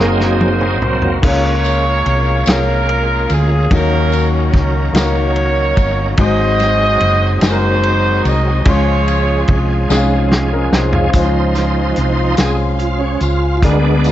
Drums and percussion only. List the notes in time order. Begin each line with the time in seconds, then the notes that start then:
0.20 snare
0.41 high tom
0.61 mid tom
0.82 mid tom
1.02 floor tom
1.23 kick, crash, tambourine
1.64 ride bell, tambourine
2.06 ride bell
2.46 snare, ride bell, tambourine
2.89 ride bell
3.30 ride bell, tambourine
3.71 kick, ride bell, tambourine
4.12 ride bell, tambourine
4.53 kick, snare, ride bell
4.95 snare, ride bell, tambourine
5.36 ride bell
5.77 kick, ride bell, tambourine
6.17 kick, ride bell, tambourine
6.59 snare, ride bell, tambourine
7.00 ride bell
7.41 snare, ride bell, tambourine
7.83 ride bell
8.25 ride bell, tambourine
8.65 kick, ride bell, tambourine
9.08 ride bell, tambourine
9.48 kick, ride bell
9.90 snare, tambourine
10.32 snare
10.73 snare, tambourine
10.93 floor tom
11.13 kick, closed hi-hat, tambourine
11.55 snare, closed hi-hat, tambourine
11.96 closed hi-hat
12.37 snare, closed hi-hat, tambourine
12.79 closed hi-hat
13.20 closed hi-hat, tambourine
13.62 kick, closed hi-hat, tambourine
14.04 closed hi-hat, tambourine